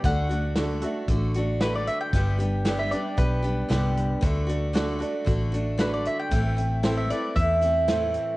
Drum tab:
HH |xxxxxxxx|xxxxxxxx|xxxxxxxx|xxxxxxxx|
SD |--o---o-|--o---o-|--o---o-|--o---o-|
BD |o---o---|o---o---|o---o---|o---o---|